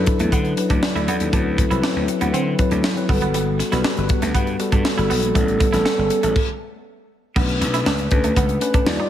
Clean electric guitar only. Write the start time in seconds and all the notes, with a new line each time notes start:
0.07 muted clean electric guitar stroke
0.20 A3
0.32 B3
0.58 muted clean electric guitar stroke
0.70 D4
0.83 muted clean electric guitar stroke
0.96 E4
1.08 B3
1.33 D4
1.58 muted clean electric guitar stroke
1.70 E4
1.83 D4
2.08 muted clean electric guitar stroke
2.21 B3
2.34 C4
2.59 muted clean electric guitar stroke
2.72 D4
2.84 muted clean electric guitar stroke
3.09 B3
3.22 B3
3.35 G3
3.60 muted clean electric guitar stroke
3.72 E4
3.85 D4
4.10 muted clean electric guitar stroke
4.22 A3
4.34 B3
4.60 muted clean electric guitar stroke
4.72 D4
4.85 muted clean electric guitar stroke
4.98 E4
5.10 B3
5.35 A3
5.60 muted clean electric guitar stroke
5.73 E4
5.85 C#4
6.11 muted clean electric guitar stroke
6.23 A3
7.36 B3
7.61 muted clean electric guitar stroke
7.74 E4
7.87 D4
8.12 muted clean electric guitar stroke
8.24 A3
8.37 B3
8.62 muted clean electric guitar stroke
8.74 D4
8.87 muted clean electric guitar stroke
9.00 D#4